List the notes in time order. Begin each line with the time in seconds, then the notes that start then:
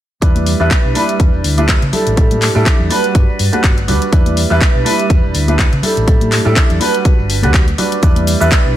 0.21 E2 G3 D4 E4 B4, kick, closed hi-hat, tambourine
0.35 closed hi-hat, tambourine, high conga
0.46 open hi-hat, tambourine
0.60 E2 G3 D4 E4 B4, tambourine
0.71 kick, clap, closed hi-hat
0.84 B1, tambourine
0.95 G3 D4 E4 B4, open hi-hat, tambourine, high conga
1.09 closed hi-hat, tambourine
1.20 E2, kick, closed hi-hat
1.33 E1, tambourine
1.44 D2, open hi-hat, tambourine
1.57 G3 D4 E4 B4, closed hi-hat, tambourine, high conga
1.69 kick, clap, closed hi-hat
1.82 C#3, closed hi-hat, tambourine
1.93 G3 D4 E4 A4, muted fingered electric bass stroke, open hi-hat, tambourine, low conga
2.06 A1, closed hi-hat, tambourine
2.17 A2 G3 D4 E4 A4, kick, closed hi-hat, tambourine
2.31 closed hi-hat, tambourine, high conga, low conga
2.42 clap, open hi-hat, tambourine
2.55 A2 G3 D4 E4 A4, tambourine
2.66 kick, clap, closed hi-hat, tambourine
2.79 E2, tambourine, low conga
2.90 G3 D4 F#4 B4, open hi-hat, tambourine, high conga
3.04 closed hi-hat, tambourine
3.15 G2, kick, closed hi-hat
3.30 tambourine
3.39 G2, open hi-hat, tambourine
3.52 G3 D4 F#4 B4, closed hi-hat, tambourine, high conga
3.64 G1, kick, clap, closed hi-hat
3.77 closed hi-hat, tambourine
3.88 D2 G3 D4 F#4 B4, open hi-hat, tambourine, low conga
4.02 closed hi-hat, tambourine
4.12 E2 G3 D4 E4 B4, kick, closed hi-hat
4.26 closed hi-hat, tambourine, high conga
4.37 open hi-hat, tambourine
4.50 E2 G3 D4 E4 B4, tambourine
4.61 kick, clap, closed hi-hat, tambourine
4.75 B1, tambourine
4.85 G3 D4 E4 B4, open hi-hat, tambourine, high conga
4.99 closed hi-hat, tambourine
5.10 E2, kick, closed hi-hat, tambourine
5.24 E1, tambourine
5.34 D2, open hi-hat, tambourine
5.48 G3 D4 E4 B4, closed hi-hat, tambourine, high conga
5.59 kick, clap, closed hi-hat
5.72 C#3, closed hi-hat, tambourine
5.83 G3 D4 E4 A4, muted fingered electric bass stroke, open hi-hat, tambourine, low conga
5.96 A1, closed hi-hat, tambourine
6.07 A2 G3 D4 E4 A4, kick, closed hi-hat
6.21 closed hi-hat, tambourine, high conga, low conga
6.32 clap, open hi-hat, tambourine
6.44 A2 G3 D4 E4 A4, tambourine
6.56 kick, clap, closed hi-hat, tambourine
6.70 E2, closed hi-hat, tambourine, low conga
6.80 G3 D4 F#4 B4, open hi-hat, tambourine, high conga
6.94 closed hi-hat, tambourine
7.05 kick, closed hi-hat, tambourine
7.19 G1, tambourine
7.30 open hi-hat, tambourine
7.42 D2 G3 D4 F#4 B4, closed hi-hat, tambourine, high conga
7.54 kick, clap, closed hi-hat
7.68 closed hi-hat, tambourine
7.78 G3 D4 F#4 B4, open hi-hat, tambourine, low conga
7.92 closed hi-hat, tambourine
8.03 E2 G3 D4 E4 B4, kick, closed hi-hat, shaker
8.16 closed hi-hat, tambourine, high conga
8.27 open hi-hat, tambourine, shaker
8.40 E2 G3 D4 E4 B4, tambourine, shaker
8.52 kick, clap, closed hi-hat, shaker
8.65 B1, tambourine